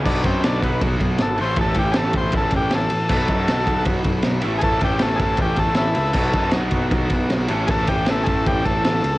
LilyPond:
<<
  \new Staff \with { instrumentName = "Transistor combo organ" } { \time 4/4 \key a \lydian \tempo 4 = 157 << { d'8 c'8 d'8 b8 r4 a'8 c''8 | a'8 g'8 <gis' a'>8 c''8 a'8 g'8 a'4~ | a'2 r2 | <gis' a'>8 g'8 a'8 <gis' a'>8 g'8 a'8 a'4~ |
a'4 r2. | <gis' a'>8 g'8 a'8 <gis' a'>8 g'8 a'8 a'4 | } \\ { r1 | r1 | r1 | r2. e'4 |
r1 | r1 | } >> }
  \new Staff \with { instrumentName = "Overdriven electric guitar" } { \time 4/4 \key a \lydian <b, fis b dis' fis'>2.~ <b, fis b dis' fis'>8 <a, e a cis' a'>8~ | <a, e a cis' a'>2.~ <a, e a cis' a'>8 r8 | <b, fis b dis' fis'>2.~ <b, fis b dis' fis'>8 <a, e a cis' a'>8~ | <a, e a cis' a'>2.~ <a, e a cis' a'>8 r8 |
<b, fis b dis' fis'>2.~ <b, fis b dis' fis'>8 <a, e a cis' a'>8~ | <a, e a cis' a'>2.~ <a, e a cis' a'>8 r8 | }
  \new Staff \with { instrumentName = "Picked electric bass" } { \clef bass \time 4/4 \key a \lydian b,,8 fis,8 b,,8 b,,8 b,,8 b,,8 gis,,8 a,,8 | a,,8 a,,8 a,,4 a,,8 a,,8 a,,8 a,,8 | b,,8 fis,8 b,,8 b,,8 b,,8 b,,8 b,,8 a,,8 | a,,8 a,,8 a,,4 a,,8 a,,8 a,,8 cis,8 |
b,,8 fis,8 b,,8 b,,8 b,,8 b,,8 b,,8 a,,8 | a,,8 a,,8 a,,4 a,,8 a,,8 a,,8 cis,8 | }
  \new DrumStaff \with { instrumentName = "Drums" } \drummode { \time 4/4 <cymc bd>8 <bd cymr>8 <cymr sn>8 <bd cymr>8 <bd cymr>8 <bd cymr>8 <cymr sn>8 cymr8 | <bd cymr>8 <bd cymr>8 <cymr sn>8 <bd cymr>8 <bd cymr>8 <bd cymr>8 <cymr sn>8 cymr8 | <cymc bd>8 <bd cymr>8 <cymr sn>8 <bd cymr>8 <bd cymr>8 <bd cymr>8 <cymr sn>8 cymr8 | <bd cymr>8 <bd cymr>8 <cymr sn>8 <bd cymr>8 <bd cymr>8 <bd cymr>8 <cymr sn>8 cymr8 |
<cymc bd>8 <bd cymr>8 <cymr sn>8 <bd cymr>8 <bd cymr>8 <bd cymr>8 <cymr sn>8 cymr8 | <bd cymr>8 <bd cymr>8 <cymr sn>8 <bd cymr>8 <bd cymr>8 <bd cymr>8 <cymr sn>8 cymr8 | }
>>